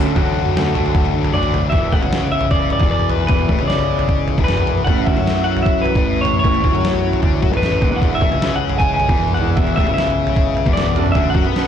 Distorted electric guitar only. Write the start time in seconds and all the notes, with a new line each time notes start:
Already playing: D3 F#3 A3 D4
0.16 D3 F#3 A3 D4 F#4
0.74 D3 F#3 A3 D4 F#4
1.34 D3 F#3 A3 D4 F#4
1.73 E2 E3
1.93 A2 A3
2.02 C#3 C#4
2.82 E2 E3
3.31 E2 E3
3.50 A2 A3
3.60 C#3 C#4
4.38 E2 E3
4.87 A2 A3
5.08 D3 D4
5.17 F#3 F#4
5.95 A2 A3
6.44 A2 A3
6.62 D3 D4
6.72 F#3 F#4
7.21 D3 D4
7.42 F#3 F#4
7.52 A2 A3
7.80 F#2 F#3
7.91 E2 E3
8.02 E2 E3
8.21 A2 A3
8.31 C#3 C#4
9.09 E2 E3
9.57 E2 E3
9.78 A2 A3
9.88 C#3 C#4
10.65 E2 E3
11.16 D3 D4
11.35 F#3 F#4
11.45 B3 B4